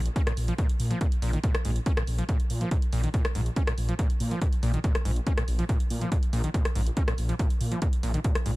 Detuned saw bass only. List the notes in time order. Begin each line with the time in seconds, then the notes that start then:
0.37 A#1
0.80 A#2
1.22 A#1
1.65 A#1
2.08 A#1
2.50 A#2
2.93 A#1
3.35 A#1
3.78 A#1
4.20 A#2
4.63 A#1
5.05 A#1
5.48 A#1
5.90 A#2
6.33 A#1
6.76 A#1
7.18 A#1
7.61 A#2
8.03 A#1
8.46 A#1